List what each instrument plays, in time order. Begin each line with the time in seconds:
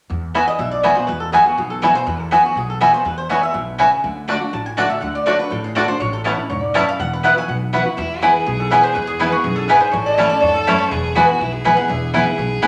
0.10 steel-string acoustic guitar E2, upright bass E2
0.34 steel-string acoustic guitar E3 G#3 B3 F#4, mandolin B3 F#4 E5 G#5, five-string banjo B3 E4
0.48 resonator guitar played with a steel bar D#5
0.59 upright bass B1, steel-string acoustic guitar B2, resonator guitar played with a steel bar E5
0.71 resonator guitar played with a steel bar D5
0.83 steel-string acoustic guitar E3 G#3 B3 F#4, mandolin B3 F#4 E5 G#5, five-string banjo B3 E4, resonator guitar played with a steel bar C#5
0.95 steel-string acoustic guitar B3 F#4, resonator guitar played with a steel bar C5
1.07 upright bass E2, steel-string acoustic guitar E2, resonator guitar played with a steel bar B4
1.20 resonator guitar played with a steel bar A4
1.32 steel-string acoustic guitar E3 G#3 B3 F#4, mandolin B3 F#4 E5 G#5, five-string banjo B3 E4, resonator guitar played with a steel bar G#4
1.46 steel-string acoustic guitar B3 F#4, resonator guitar played with a steel bar F#4
1.57 upright bass B1, steel-string acoustic guitar B2, resonator guitar played with a steel bar G#4
1.70 resonator guitar played with a steel bar A4
1.82 steel-string acoustic guitar E3 G#3 B3 F#4, mandolin B3 F#4 E5 G#5, five-string banjo B3 E4, resonator guitar played with a steel bar B4
1.95 steel-string acoustic guitar B3 F#4, resonator guitar played with a steel bar C5
2.07 upright bass E2, steel-string acoustic guitar E2, resonator guitar played with a steel bar B4
2.20 resonator guitar played with a steel bar A4
2.31 steel-string acoustic guitar E3 G#3 B3 F#4, mandolin B3 F#4 E5 G#5, five-string banjo B3 E4, resonator guitar played with a steel bar G#4
2.45 steel-string acoustic guitar B3 F#4, resonator guitar played with a steel bar F#4
2.55 upright bass B1, steel-string acoustic guitar B2, resonator guitar played with a steel bar G#4
2.70 resonator guitar played with a steel bar A4
2.80 steel-string acoustic guitar E3 G#3 B3 F#4, mandolin B3 F#4 E5 G#5, five-string banjo B3 E4, resonator guitar played with a steel bar B4
2.93 steel-string acoustic guitar B3 F#4, resonator guitar played with a steel bar C5
3.05 upright bass E2, steel-string acoustic guitar E2, resonator guitar played with a steel bar B4
3.18 resonator guitar played with a steel bar C5
3.29 steel-string acoustic guitar E3 G#3 B3 F#4, mandolin B3 F#4 E5 G#5, five-string banjo B3 E4, resonator guitar played with a steel bar C#5
3.43 resonator guitar played with a steel bar E5
3.54 upright bass B1, steel-string acoustic guitar B2
3.78 steel-string acoustic guitar C#3, mandolin B3 F#4 E5 G#5, five-string banjo B3 E4
4.04 upright bass D2, steel-string acoustic guitar D3
4.27 steel-string acoustic guitar D3 A3 D4 F#4, mandolin A3 F#4 D5 A5, five-string banjo A3 D4 F#4
4.41 steel-string acoustic guitar D4 F#4
4.53 upright bass A1, steel-string acoustic guitar A2, resonator guitar played with a steel bar A5
4.66 resonator guitar played with a steel bar G#5
4.77 steel-string acoustic guitar D3 A3 D4 F#4, mandolin A3 F#4 D5 A5, five-string banjo A3 D4 F#4, resonator guitar played with a steel bar F#5
4.90 resonator guitar played with a steel bar E5
5.01 upright bass D2, steel-string acoustic guitar D3, resonator guitar played with a steel bar F#5
5.15 resonator guitar played with a steel bar D5
5.26 steel-string acoustic guitar D3 A3 D4 F#4, mandolin A3 F#4 D5 A5, five-string banjo A3 D4 F#4, resonator guitar played with a steel bar C#5
5.39 steel-string acoustic guitar D4 F#4, resonator guitar played with a steel bar B4
5.50 upright bass A1, steel-string acoustic guitar A2, resonator guitar played with a steel bar A4
5.64 resonator guitar played with a steel bar G#4
5.75 steel-string acoustic guitar D3 A3 D4 F#4, mandolin A3 F#4 D5 A5, five-string banjo A3 D4 F#4, resonator guitar played with a steel bar B4
5.88 steel-string acoustic guitar D4 F#4, resonator guitar played with a steel bar C5
6.00 upright bass A1, steel-string acoustic guitar A2, resonator guitar played with a steel bar C#5
6.13 resonator guitar played with a steel bar A4
6.24 steel-string acoustic guitar E3 B3 C#4 E4, five-string banjo A3 C#4 E4, mandolin B3 E4 C#5 A5
6.37 steel-string acoustic guitar C#4 E4
6.50 upright bass E1, steel-string acoustic guitar G#2, resonator guitar played with a steel bar C#5
6.62 resonator guitar played with a steel bar D5
6.74 steel-string acoustic guitar F#2, five-string banjo A3 C#4 E4, mandolin B3 E4 C#5 A5, resonator guitar played with a steel bar E5
6.89 resonator guitar played with a steel bar F5
6.99 upright bass E1, steel-string acoustic guitar E2, resonator guitar played with a steel bar F#5
7.13 resonator guitar played with a steel bar B4
7.23 steel-string acoustic guitar E3 B3 E4 F#4, mandolin B3 E4 B4 F#5, five-string banjo B3 E4, resonator guitar played with a steel bar E5
7.36 steel-string acoustic guitar E4 F#4, resonator guitar played with a steel bar G#5
7.48 upright bass B1, steel-string acoustic guitar B2, resonator guitar played with a steel bar F#5
7.73 steel-string acoustic guitar E3 B3 E4 F#4, mandolin B3 E4 B4 F#5, five-string banjo B3 E4
7.85 steel-string acoustic guitar E4 F#4
7.97 steel-string acoustic guitar E2, upright bass E2, fiddle E4
8.21 steel-string acoustic guitar E3 G#3 B3 E4, mandolin B3 E4 B4 G#5, five-string banjo B3 E4, fiddle G#4
8.46 upright bass B1, steel-string acoustic guitar B2, resonator guitar played with a steel bar G#4
8.60 resonator guitar played with a steel bar A4
8.70 steel-string acoustic guitar E3 G#3 B3 E4, five-string banjo B3 E4, mandolin B3 E4 B4 G#5, resonator guitar played with a steel bar B4
8.83 resonator guitar played with a steel bar C5
8.95 upright bass E2, steel-string acoustic guitar E2, resonator guitar played with a steel bar B4
9.07 resonator guitar played with a steel bar G#4
9.19 steel-string acoustic guitar E3 G#3 B3 E4, mandolin B3 E4 B4 G#5, five-string banjo B3 E4, resonator guitar played with a steel bar E4
9.32 steel-string acoustic guitar B3 E4, resonator guitar played with a steel bar F#4
9.44 upright bass B1, steel-string acoustic guitar F#2, resonator guitar played with a steel bar G#4
9.56 resonator guitar played with a steel bar A4
9.68 steel-string acoustic guitar G#2, mandolin B3 E4 B4 G#5, five-string banjo B3 E4, resonator guitar played with a steel bar B4
9.80 resonator guitar played with a steel bar C5
9.92 upright bass A1, steel-string acoustic guitar A2, fiddle A4, resonator guitar played with a steel bar C#5
10.06 resonator guitar played with a steel bar D5
10.17 steel-string acoustic guitar E3 A3 C#4 E4, mandolin A3 E4 C#5 A5, five-string banjo A3 C#4 E4, resonator guitar played with a steel bar E5
10.29 steel-string acoustic guitar C#4 E4, resonator guitar played with a steel bar D5
10.40 upright bass E2, steel-string acoustic guitar G#2, resonator guitar played with a steel bar C#5
10.54 resonator guitar played with a steel bar A4
10.67 steel-string acoustic guitar F#2, mandolin A3 E4 C#5 A5, five-string banjo A3 C#4 E4
10.78 resonator guitar played with a steel bar C#5
10.91 upright bass E1, steel-string acoustic guitar E2, fiddle G#4, resonator guitar played with a steel bar B4
11.15 steel-string acoustic guitar E3 G#3 B3 E4, mandolin B3 E4 B4 G#5, five-string banjo B3 E4, fiddle F#4
11.28 steel-string acoustic guitar B3 E4
11.40 upright bass B1, steel-string acoustic guitar B2, fiddle E4
11.53 fiddle G#4
11.64 steel-string acoustic guitar E3 G#3 B3 E4, mandolin B3 E4 B4 G#5, five-string banjo B3 E4
11.77 steel-string acoustic guitar B3 E4, resonator guitar played with a steel bar F#5
11.88 upright bass E1, steel-string acoustic guitar E2, resonator guitar played with a steel bar E5
12.13 steel-string acoustic guitar E3 G#3 B3 E4, mandolin B3 E4 B4 G#5, five-string banjo B3 E4, fiddle G#4
12.27 steel-string acoustic guitar B3 E4
12.38 upright bass B1, steel-string acoustic guitar B2
12.62 upright bass C#2, steel-string acoustic guitar E3 G#3 B3, mandolin B3 E4 B4 G#5, five-string banjo B3 E4